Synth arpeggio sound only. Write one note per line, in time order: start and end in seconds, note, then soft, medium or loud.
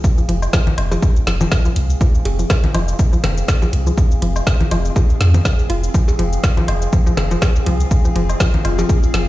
0.18 0.23 F3 medium
0.29 0.35 F3 loud
0.53 0.57 F3 loud
0.91 0.99 F3 loud
1.27 1.34 F3 medium
1.41 1.46 F3 loud
1.65 1.69 F3 loud
2.01 2.11 F3 loud
2.39 2.44 F3 medium
2.50 2.57 F3 loud
2.74 2.79 F3 loud
3.13 3.21 F3 loud
3.48 3.55 F3 medium
3.62 3.67 F3 loud
3.87 3.90 F3 loud
4.22 4.32 F3 loud
4.61 4.66 F3 medium
4.71 4.78 F3 loud
4.96 5.00 F3 loud
5.34 5.39 C4 medium
5.70 5.80 F4 loud
5.94 6.01 F3 loud
6.19 6.23 F3 loud
6.57 6.65 F3 loud
6.93 6.99 F3 medium
7.06 7.12 F3 loud
7.31 7.34 F3 loud
7.66 7.76 F3 loud
8.05 8.10 F3 medium
8.16 8.22 F3 loud
8.40 8.44 F3 loud
8.79 8.86 F3 loud
9.14 9.21 F3 medium